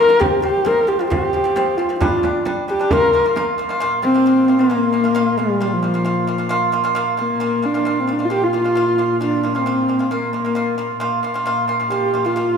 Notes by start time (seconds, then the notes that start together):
0.00 A#4
0.09 A#3 F4
0.20 F3 C4 G4, frame drum
0.42 F3 C4 G4
0.55 frame drum
0.65 F3 C4 A#4, frame drum
0.87 F3 C4 G4, frame drum
0.99 F3 C4 F4
1.10 F3 C4 G4, frame drum
1.33 F3 C4
1.44 F3 C4, frame drum
1.56 F3 C4, frame drum
1.78 F3 C4 F4
1.89 F3 C4
1.99 G3 D4 F4, frame drum
2.23 G3 D4, frame drum
2.35 frame drum
2.45 G3 D4, frame drum
2.68 G3 D4 G4
2.79 G3 D4
2.91 A#3 F4 A#4, frame drum
3.13 A#3 F4
3.25 A#3 F4, frame drum
3.36 A#3 F4, frame drum
3.58 A#3 F4
3.69 A#3 F4
3.80 A#2 A#3 F4
4.03 A#3 C4 F4
4.14 A#3 F4
4.26 A#3 F4
4.48 A#3 F4
4.59 A#3 F4
4.70 A#3 F4
4.93 A#3 F4
5.04 A#3 F4
5.15 A#3 F4
5.38 G3 A#3 F4
5.60 A#3 F4
5.73 F3
5.83 A#3 F4
5.94 A#3 F4
6.04 A#3 F4
6.27 A#3 F4
6.38 A#3 F4
6.49 A#3 F4
6.72 A#3 F4
6.84 A#3 F4
6.95 A#3 F4
7.17 A#3 F4
7.40 A#2 A#3 F4
7.62 A#3 D4 F4
7.74 A#3 F4
7.85 A#3 F4
8.00 C4
8.07 A#3 F4
8.12 D4
8.19 A#3 F4
8.25 F4
8.30 A#3 F4 G4
8.44 F4
8.53 A#3 F4
8.64 A#3 F4
8.75 A#3 F4
8.98 A#3 F4
9.21 A#3 D4 F4
9.43 A#3 C4 F4
9.55 A#3 F4
9.66 A#3 F4
9.88 A#3 F4
9.99 A#3 F4
10.11 A#3 F4
10.33 A#3 F4
10.45 A#3 F4
10.55 A#3 F4
10.78 A#3 F4
11.00 A#2 A#3 F4
11.23 A#3 F4
11.34 A#3 F4
11.46 A#3 F4
11.68 A#3 F4
11.80 A#3 F4
11.90 A#3 F4 G4
12.14 A#3 F4
12.25 A#3 F4
12.36 A#3 F4